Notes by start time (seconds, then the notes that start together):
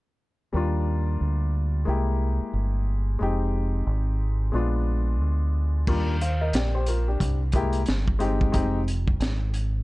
0.53 D#2 G3 A#3 D4 F4
1.21 D2
1.85 C2 G#3 A#3 E4 G4
2.40 muted fingered electric bass stroke
2.53 G1
3.19 F1 G#3 C4 D#4 G4
3.87 G#1
4.52 A#1 G#3 B3 D4 F4
5.21 D2
5.87 D#2 G3 A#3 D4 F4, kick, crash
6.21 C5 F5, closed hi-hat
6.41 A#4 D#5
6.53 A#1 G4 D5, snare, closed hi-hat
6.75 G4 C5
6.86 F4 A#4, closed hi-hat
7.08 D4 G4
7.20 C2, kick, closed hi-hat
7.52 G#3 A#3 E4 G4, kick, closed hi-hat
7.73 closed hi-hat
7.86 G1, snare, closed hi-hat
8.08 kick
8.19 G#3 C4 D#4 G4, closed hi-hat
8.41 kick
8.52 F1 G#3 C4 D#4 G4, kick, closed hi-hat
8.88 closed hi-hat
9.08 kick
9.20 G#1, snare, closed hi-hat
9.54 closed hi-hat